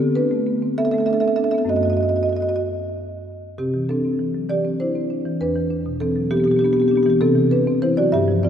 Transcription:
Already playing: D3 C4 A4
0.00 B3
0.15 D4 B4
0.31 A3
0.47 B3
0.62 C4
0.78 B3 A4 E5
0.85 A4 E5
0.91 A3 A4 E5
0.98 A4 E5
1.06 D4 A4 E5
1.13 A4 E5
1.20 C4 A4 E5
1.28 A4 E5
1.36 D4 A4 E5
1.44 A4 E5
1.51 B3 A4 E5
1.58 A4 E5
1.65 F#2 A3 C#4
1.69 F#4 D#5
1.76 F#4 D#5
1.83 F#4 D#5
1.90 F#4 D#5
1.97 F#4 D#5
2.03 D#5
2.09 F#4 D#5
2.16 F#4 D#5
2.23 F#4 D#5
2.29 F#4 D#5
2.36 D#5
2.41 F#4 D#5
2.49 F#4 D#5
2.56 F#4 D#5
3.58 C3 C4 G4
3.74 E3
3.89 C4 D4 A4
4.05 C4
4.19 E3
4.34 F#3
4.49 E3 G4 D5
4.65 C4
4.80 D4 E4 C5
4.95 C4
5.10 D4
5.26 E3
5.41 E2 D4 B4
5.56 E3
5.70 D4
5.86 B2
6.00 E3 C4 A4
6.16 F#3
6.31 E3 B3 G4
6.37 B3 G4
6.44 B2 B3 G4
6.51 G4
6.57 B3 G4
6.61 B3 D4
6.66 G4
6.73 B3 G4
6.77 C4 G4
6.82 B3
6.88 B3 D4 G4
6.96 B3 G4
7.03 E3 B3 G4
7.10 G4
7.21 C3 C4 A4
7.36 E3
7.51 D4 B4
7.67 C4
7.82 E3 E4 C5
7.97 F#3 F#4 D5
8.12 G2 G4 E5
8.28 F3
8.43 C4 F4 D5

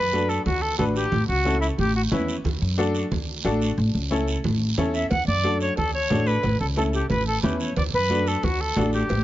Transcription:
Already playing: F#2 B4
0.13 D4 F#4 A4, high conga, short guiro
0.29 A4, short guiro
0.45 D2 F#4, high conga, low conga, long guiro
0.62 A4
0.78 A1 D4 F#4 A4 B4, high conga, low conga, short guiro
0.94 G4, short guiro
1.12 A1, high conga, low conga, long guiro
1.27 C#2 F#4
1.45 C#4 E4 A4, high conga, short guiro
1.61 E4, short guiro
1.78 A1 G4, high conga, low conga, long guiro
1.96 F#4
2.11 E2 C#4 E4 B4, high conga, low conga, short guiro
2.28 short guiro
2.44 D2, high conga, low conga, long guiro
2.61 F#2
2.78 D4 F#4 A4, high conga, short guiro
2.95 short guiro
3.11 D2, high conga, low conga, long guiro
3.44 A1 D4 F#4 A4, high conga, short guiro
3.61 short guiro
3.78 A1, high conga, long guiro
3.94 C#2
4.11 C#4 E4 A4, high conga, short guiro
4.27 short guiro
4.44 A1, high conga, low conga, long guiro
4.77 E2 C#4 E4 A4, high conga, low conga, short guiro
4.93 E5, short guiro
5.10 D2 F#5, cowbell, high conga, low conga, long guiro
5.27 F#2 D5
5.44 D4 F#4 A4, cowbell, high conga, short guiro
5.60 C#5, short guiro
5.77 D2 A4, cowbell, high conga, low conga, long guiro
5.94 C#5
6.10 A1 D4 F#4 A4, cowbell, high conga, low conga, low timbale, short guiro
6.27 B4, short guiro
6.43 A1, cowbell, high conga, low conga, long guiro
6.60 C#2 A4
6.76 C#4 E4 A4, cowbell, high conga, short guiro
6.93 G4, short guiro
7.10 A1 B4, cowbell, high conga, low conga, long guiro
7.27 A4
7.43 E2 C#4 E4 G4 B4, cowbell, high conga, low conga, short guiro
7.60 C#5, short guiro
7.76 D2 D5, cowbell, high conga, low conga, long guiro
7.93 F#2 B4
8.10 D4 F#4 A4, cowbell, high conga, short guiro
8.27 A4, short guiro
8.43 D2 F#4, cowbell, high conga, low conga, long guiro
8.61 A4
8.76 A1 D4 F#4 A4, cowbell, high conga, low conga, low timbale, short guiro
8.93 G4, short guiro
9.09 A1, cowbell, high conga, long guiro

